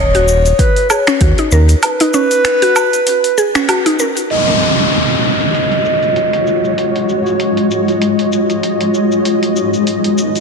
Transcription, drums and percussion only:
0.15 open hi-hat
0.28 cabasa
0.46 open hi-hat, cabasa
0.59 kick, open hi-hat, cabasa
0.76 open hi-hat
0.90 cabasa, low woodblock
1.07 finger snap, open hi-hat, cabasa
1.21 kick, open hi-hat, cabasa
1.38 open hi-hat
1.52 cabasa
1.69 open hi-hat, cabasa
1.83 open hi-hat, cabasa, low woodblock
2.00 open hi-hat
2.14 cabasa
2.31 open hi-hat, cabasa
2.45 finger snap, open hi-hat, cabasa
2.62 open hi-hat
2.76 cabasa, low woodblock
2.93 open hi-hat, cabasa
3.07 open hi-hat, cabasa
3.24 open hi-hat
3.38 cabasa
3.55 finger snap, open hi-hat, cabasa
3.69 open hi-hat, cabasa, low woodblock
3.86 open hi-hat
3.99 cabasa
4.17 open hi-hat, cabasa
4.30 open hi-hat, cabasa
4.48 open hi-hat
4.61 cabasa
4.79 cabasa
4.92 open hi-hat
5.10 open hi-hat
5.23 cabasa
5.41 open hi-hat, cabasa
5.54 open hi-hat, cabasa
5.72 open hi-hat
5.85 cabasa
6.03 open hi-hat, cabasa
6.16 open hi-hat, cabasa
6.33 open hi-hat
6.47 cabasa
6.65 cabasa
6.78 open hi-hat, cabasa
6.96 open hi-hat
7.09 cabasa
7.26 cabasa
7.40 open hi-hat, cabasa
7.57 open hi-hat
7.71 cabasa
7.88 open hi-hat, cabasa
8.02 open hi-hat, cabasa
8.19 open hi-hat
8.32 cabasa
8.50 open hi-hat, cabasa
8.63 open hi-hat, cabasa
8.81 open hi-hat
8.94 cabasa
9.12 cabasa
9.25 open hi-hat, cabasa
9.43 open hi-hat
9.56 cabasa
9.74 cabasa
9.87 open hi-hat, cabasa
10.04 open hi-hat
10.18 cabasa
10.36 open hi-hat, cabasa

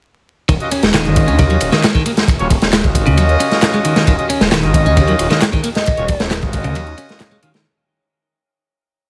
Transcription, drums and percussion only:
0.49 kick, closed hi-hat, ride
0.60 closed hi-hat
0.71 closed hi-hat, ride
0.83 snare, closed hi-hat
0.94 snare, clap, closed hi-hat, ride
1.05 closed hi-hat
1.16 kick, closed hi-hat, ride
1.28 closed hi-hat
1.39 kick, closed hi-hat, ride
1.50 closed hi-hat, ride
1.60 closed hi-hat, ride
1.72 snare, closed hi-hat
1.84 snare, clap, closed hi-hat, ride
1.95 kick, closed hi-hat
2.06 closed hi-hat, ride
2.17 snare, closed hi-hat
2.28 kick, closed hi-hat, ride
2.39 closed hi-hat
2.50 kick, closed hi-hat, ride
2.62 snare, closed hi-hat
2.73 snare, clap, closed hi-hat, ride
2.84 kick, closed hi-hat
2.95 kick, closed hi-hat, ride
3.07 closed hi-hat, ride
3.18 closed hi-hat, ride
3.29 closed hi-hat
3.40 closed hi-hat, ride
3.51 snare, closed hi-hat
3.62 snare, clap, closed hi-hat, ride
3.73 closed hi-hat, ride
3.85 closed hi-hat, ride
3.96 snare, closed hi-hat
4.07 kick, closed hi-hat, ride
4.19 closed hi-hat
4.30 closed hi-hat, ride
4.41 snare, closed hi-hat
4.52 snare, clap, closed hi-hat, ride
4.63 closed hi-hat
4.74 kick, closed hi-hat, ride
4.86 closed hi-hat
4.97 kick, closed hi-hat, ride
5.07 closed hi-hat, ride
5.19 closed hi-hat, ride
5.31 snare, closed hi-hat
5.42 snare, clap, closed hi-hat, ride
5.53 kick, closed hi-hat
5.64 closed hi-hat, ride
5.75 snare, closed hi-hat
5.86 kick, closed hi-hat, ride
5.97 closed hi-hat
6.08 kick, closed hi-hat, ride
6.20 snare, closed hi-hat
6.31 snare, clap, closed hi-hat, ride
6.42 kick, closed hi-hat
6.53 kick, closed hi-hat, ride
6.64 closed hi-hat, ride
6.75 closed hi-hat, ride
6.87 closed hi-hat
6.97 closed hi-hat, ride
7.09 snare, closed hi-hat
7.20 snare, clap, closed hi-hat, ride
7.31 closed hi-hat, ride
7.42 closed hi-hat, ride
7.54 snare, closed hi-hat

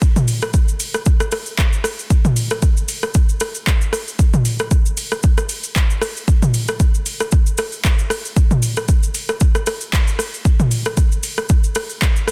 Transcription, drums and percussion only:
0.02 kick, shaker
0.16 mid tom, shaker
0.28 open hi-hat, shaker
0.42 cross-stick, shaker
0.54 kick, shaker
0.68 shaker
0.80 open hi-hat, shaker
0.94 cross-stick, shaker
1.06 kick, shaker
1.20 cross-stick, shaker
1.32 cross-stick, open hi-hat, shaker
1.46 shaker
1.58 kick, clap, shaker
1.73 shaker
1.84 cross-stick, open hi-hat, shaker
1.99 shaker
2.10 kick, shaker
2.25 mid tom, shaker
2.36 open hi-hat, shaker
2.50 cross-stick, shaker
2.62 kick, shaker
2.77 shaker
2.88 open hi-hat, shaker
3.03 cross-stick, shaker
3.14 kick, shaker
3.29 shaker
3.40 cross-stick, open hi-hat, shaker
3.55 shaker
3.67 kick, clap, shaker
3.81 shaker
3.93 cross-stick, open hi-hat, shaker
4.08 shaker
4.19 kick, shaker
4.34 mid tom, shaker
4.45 open hi-hat, shaker
4.59 cross-stick, shaker
4.71 kick, shaker
4.86 shaker
4.97 open hi-hat, shaker
5.12 cross-stick, shaker
5.23 kick, shaker
5.38 cross-stick, shaker
5.49 open hi-hat, shaker
5.63 shaker
5.76 kick, clap, shaker
5.90 shaker
6.02 cross-stick, open hi-hat, shaker
6.17 shaker
6.28 kick, shaker
6.42 mid tom, shaker
6.54 open hi-hat, shaker
6.68 cross-stick, shaker
6.80 kick, shaker
6.94 shaker
7.06 open hi-hat, shaker
7.20 cross-stick, shaker
7.32 kick, shaker
7.46 shaker
7.58 cross-stick, open hi-hat, shaker
7.72 shaker
7.84 kick, clap, shaker
7.99 shaker
8.10 cross-stick, open hi-hat, shaker
8.25 shaker
8.36 kick, shaker
8.51 mid tom, shaker
8.62 open hi-hat, shaker
8.77 cross-stick, shaker
8.88 kick, shaker
9.03 shaker
9.14 open hi-hat, shaker
9.29 cross-stick, shaker
9.40 kick, shaker
9.55 cross-stick, shaker
9.66 cross-stick, open hi-hat, shaker
9.81 shaker
9.93 kick, clap, shaker
10.07 shaker
10.19 cross-stick, open hi-hat, shaker
10.34 shaker
10.45 kick, shaker
10.60 mid tom, shaker
10.71 open hi-hat, shaker
10.85 cross-stick, shaker
10.97 kick, shaker
11.12 shaker
11.23 open hi-hat, shaker
11.38 cross-stick, shaker
11.49 kick, shaker
11.64 shaker
11.75 cross-stick, open hi-hat, shaker
11.90 shaker
12.02 kick, clap, shaker
12.16 shaker
12.28 cross-stick, open hi-hat, shaker

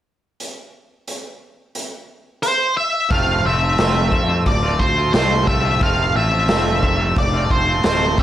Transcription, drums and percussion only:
0.40 closed hi-hat
1.08 closed hi-hat
1.75 closed hi-hat
2.43 closed hi-hat
3.11 kick, open hi-hat
3.78 snare, open hi-hat
4.12 kick
4.46 kick, open hi-hat
4.80 kick
5.13 snare, open hi-hat
5.47 kick
5.81 kick, open hi-hat
6.48 snare, open hi-hat
6.83 kick
7.16 kick, open hi-hat
7.50 kick
7.83 snare, open hi-hat
8.18 kick

